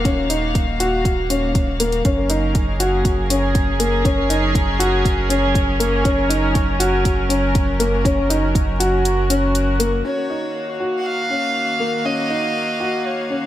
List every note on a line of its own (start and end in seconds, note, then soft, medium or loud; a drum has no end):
0.00 2.03 D#1 medium
0.00 2.05 D#3 medium
0.00 3.82 A#3 medium
0.00 2.05 F#4 medium
0.00 3.60 F5 medium
0.05 0.26 C#4 medium
0.05 kick loud
0.05 closed hi-hat soft
0.30 0.71 D#4 medium
0.30 closed hi-hat medium
0.55 kick loud
0.55 closed hi-hat soft
0.80 1.21 F#4 medium
0.80 closed hi-hat medium
1.05 kick medium
1.05 closed hi-hat soft
1.30 1.71 C#4 medium
1.30 closed hi-hat medium
1.55 kick loud
1.55 closed hi-hat soft
1.80 2.01 A#3 medium
1.80 closed hi-hat medium
1.92 closed hi-hat soft
2.05 10.03 F#1 medium
2.05 10.05 F#3 medium
2.05 2.26 C#4 medium
2.05 kick medium
2.05 closed hi-hat soft
2.15 11.27 A#4 medium
2.24 10.68 C#4 medium
2.30 2.71 D#4 medium
2.30 closed hi-hat medium
2.55 7.28 G#4 medium
2.55 kick medium
2.55 closed hi-hat soft
2.80 3.21 F#4 medium
2.80 closed hi-hat medium
3.05 kick medium
3.05 closed hi-hat soft
3.30 3.71 C#4 medium
3.30 closed hi-hat medium
3.55 kick loud
3.55 closed hi-hat soft
3.80 4.01 A#3 medium
3.80 closed hi-hat medium
4.05 4.26 C#4 medium
4.05 kick medium
4.05 closed hi-hat soft
4.30 4.71 D#4 medium
4.30 closed hi-hat medium
4.55 kick medium
4.55 closed hi-hat soft
4.79 5.21 F#4 medium
4.79 closed hi-hat medium
5.05 kick medium
5.05 closed hi-hat soft
5.29 5.71 C#4 medium
5.29 closed hi-hat medium
5.55 kick medium
5.55 closed hi-hat soft
5.80 6.01 A#3 medium
5.80 closed hi-hat medium
6.04 6.25 C#4 medium
6.04 kick medium
6.04 closed hi-hat soft
6.29 6.71 D#4 medium
6.29 closed hi-hat medium
6.55 kick medium
6.55 closed hi-hat soft
6.80 7.21 F#4 medium
6.80 closed hi-hat medium
7.05 kick medium
7.05 closed hi-hat soft
7.13 13.46 F#4 medium
7.29 7.71 C#4 medium
7.29 closed hi-hat medium
7.55 kick medium
7.55 closed hi-hat soft
7.80 8.00 A#3 medium
7.80 closed hi-hat medium
8.05 8.26 C#4 medium
8.05 kick medium
8.05 closed hi-hat soft
8.30 8.71 D#4 medium
8.30 closed hi-hat medium
8.55 kick loud
8.55 closed hi-hat soft
8.80 9.21 F#4 medium
8.80 closed hi-hat medium
9.05 closed hi-hat soft
9.30 9.71 C#4 medium
9.30 closed hi-hat medium
9.55 closed hi-hat soft
9.80 10.00 A#3 medium
9.80 closed hi-hat medium
10.04 13.46 D#3 medium
10.04 10.25 C#4 medium
10.04 10.76 C#5 medium
10.28 13.46 A#3 medium
10.28 10.71 D#4 medium
10.44 13.46 F5 medium
10.80 11.21 F#4 medium
10.98 11.07 F#5 medium
11.06 12.07 F5 medium
11.30 11.71 C#4 medium
11.80 12.01 A#3 medium
12.05 12.26 C#4 medium
12.05 13.07 D#5 medium
12.30 12.71 D#4 medium
12.80 13.21 F#4 medium
13.06 13.46 C#5 medium
13.30 13.46 C#4 medium